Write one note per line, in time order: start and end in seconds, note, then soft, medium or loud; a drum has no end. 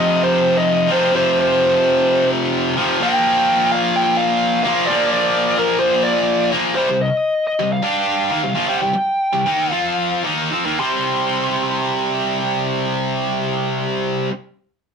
0.00 0.88 F2 loud
0.00 0.88 C3 loud
0.00 0.87 F3 loud
0.00 0.21 D#5 loud
0.24 0.58 C5 medium
0.57 0.92 D#5 loud
0.88 1.11 F2 medium
0.88 1.12 C3 medium
0.88 1.15 F3 medium
0.88 1.15 C5 medium
1.12 2.76 F2 loud
1.12 2.77 C3 loud
1.12 2.76 F3 loud
1.12 1.39 C5 loud
1.40 2.28 C5 medium
2.76 3.01 F2 medium
2.76 2.99 C3 medium
2.76 3.01 F3 medium
3.00 4.63 A#2 loud
3.00 4.64 F3 loud
3.00 4.63 A#3 loud
3.00 3.75 G5 loud
3.72 3.96 F5 loud
3.96 4.20 G5 loud
4.17 4.62 F5 loud
4.63 4.88 F3 medium
4.63 4.87 A#3 loud
4.63 4.86 F5 loud
4.68 4.87 A#2 medium
4.87 6.52 A#2 loud
4.87 6.53 F3 loud
4.87 5.11 D5 loud
4.92 6.50 A#3 loud
5.12 5.61 D5 medium
5.58 5.79 A#4 medium
5.80 6.06 C5 medium
6.03 6.48 D5 medium
6.52 6.76 F3 medium
6.52 6.75 A#3 medium
6.56 6.76 A#2 medium
6.75 6.88 C3 medium
6.75 6.88 G3 loud
6.75 7.00 C5 medium
6.89 7.08 C3 medium
6.89 7.08 G3 medium
7.01 7.46 D#5 medium
7.47 7.70 D#5 medium
7.60 7.79 C3 medium
7.60 7.79 G3 medium
7.73 8.45 F5 medium
7.83 8.31 G3 medium
7.83 8.32 D4 medium
7.83 8.32 G4 medium
8.31 8.43 D#3 medium
8.31 8.44 A#3 medium
8.43 8.55 C3 medium
8.43 8.56 G3 medium
8.43 8.71 F5 medium
8.55 8.67 A#2 medium
8.55 8.68 F3 loud
8.68 8.80 C3 medium
8.68 8.81 G3 loud
8.68 9.73 G5 medium
8.81 8.92 C3 medium
8.81 8.95 G3 medium
8.93 muted distorted electric guitar stroke medium
9.33 9.45 C3 medium
9.33 9.46 G3 medium
9.46 9.71 D#3 medium
9.46 9.71 A#3 medium
9.46 9.72 D#4 medium
9.71 10.24 F3 medium
9.71 10.25 C4 medium
9.71 10.25 F4 medium
9.71 10.22 F5 medium
10.24 10.51 D#3 medium
10.24 10.52 A#3 medium
10.24 10.52 D#4 medium
10.52 10.65 F3 medium
10.52 10.65 C4 medium
10.65 10.78 D#3 medium
10.65 10.79 A#3 medium
10.79 14.29 C3 medium
10.79 14.30 G3 medium
10.79 14.32 C4 medium
10.79 13.82 C6 medium